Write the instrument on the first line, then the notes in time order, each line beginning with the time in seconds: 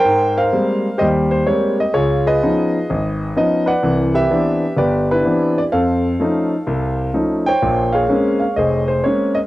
grand piano
Already playing: A#4 C5 G5
0.05 G#2
0.37 A#4 C5 F5
0.53 G3 G#3 A#3 C4
0.98 D#2 G3 G4 C5 D#5
1.31 C5
1.47 G3 G#3 A#3 C4 C#5
1.80 D#5
1.94 C#2 F4 G#4 C#5
2.27 G#4 B4 D#5
2.43 F3 B3 C#4 D#4
2.90 G#1
3.36 F3 B3 C#4 D#4 D#5
3.66 B4 D5 F#5
3.83 C2 E3
4.15 G4 B4 E5
4.30 E3 B3 C4 D4
4.76 G1 G4 B4 D5
5.11 D4 E4 B4
5.25 E3 B3 C4 D4
5.58 D5
5.72 F2 A4 C5 F5
6.20 F3 A3 C#4 D#4
6.66 C2 C3
7.14 F3 A3 C#4 D#4
7.46 C5 C#5 G5
7.62 A#1 A#2
7.92 G#4 C#5 F5
8.09 G#3 A#3 C4 C#4
8.40 F5
8.56 F1 G#4 C5 D#5
8.88 C5
9.04 G#3 A#3 C4 C#4 C#5
9.35 D#5